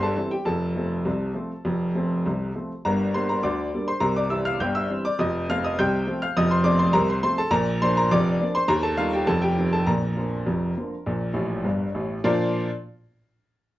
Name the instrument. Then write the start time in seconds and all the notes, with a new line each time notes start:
upright piano
Already playing: G1 G2
0.03 A4 A5
0.17 E3 G3 C4
0.31 G4 G5
0.45 F1 F2 A4 A5
0.76 F3 A3 C4
1.05 C2 C3
1.34 F3 A3 C4
1.65 F1 F2
1.95 F3 A3 C4
2.26 C2 C3
2.55 F3 A3 C4
2.85 G1 G2 A#4 A#5
3.14 D3 G3 A#3 C5 C6
3.29 A#4 A#5
3.43 D2 D3 D5 D6
3.74 D3 G3 A#3
3.88 C5 C6
4.00 C2 C3 A#4 A#5
4.16 D5 D6
4.30 E3 G3 C4 E5 E6
4.45 F5 F6
4.60 G1 G2 G5 G6
4.75 E5 E6
4.89 E3 G3 C4
5.05 D5 D6
5.19 F1 F2 D#5 D#6
5.49 F3 A3 C4 F5 F6
5.64 D#5 D#6
5.79 C2 C3 G5 G6
6.07 F3 A3 C4
6.22 F5 F6
6.37 F1 F2 D#5 D#6
6.51 C5 C6
6.64 F3 A3 C4 D5 D6
6.79 C5 C6
6.93 C2 C3 A#4 A#5
7.10 C5 C6
7.23 F3 A3 C4 C5 C6
7.38 A4 A5
7.50 A#1 A#2 A#4 A#5
7.82 F3 A#3 D4 C5 C6
7.97 A#4 A#5
8.11 F1 F2 D5 D6
8.40 F3 A#3 D4
8.55 C5 C6
8.68 D#2 D#3 A#4 A#5
8.83 A4 A5
8.97 D#3 G3 D#4 F4 F5
9.13 G4 G5
9.27 F1 F2 A4 A5
9.42 G4 G5
9.57 D#3 F3 C4
9.73 A4 A5
9.87 A#1 A#2 A#4 A#5
10.17 D3 F3 A#3
10.46 F1 F2
10.77 D3 F3 A#3
11.06 A#1 A#2
11.34 A1 A2
11.64 G1 G2
11.95 A1 A2
12.24 A#2 F3 D4 F4 A#4 D5